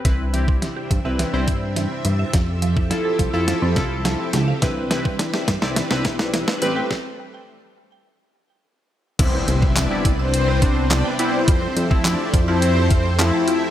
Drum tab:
CC |----------------|----------------|----------------|----------------|
HH |x-x-x-x-x-x-x-x-|x-x-x-x-x-x-x-x-|x-x-x-x-x-x-x-x-|----------------|
CP |----------------|----------------|----------------|----------------|
SD |o---o---o---o---|o---o---o-o-o-o-|o-o-oooooooooo--|o---------------|
BD |o--o--o---o-----|o--o--o---o-----|o--o--o---o-----|o---------------|

CC |x---------------|----------------|
HH |x-x-x-x-x-x-x-x-|x-x-x-x-x-x-x-x-|
CP |----x-------x---|----x-------x---|
SD |----o-------o---|----o-------o---|
BD |o--o--o---o-----|o--o--o---o-----|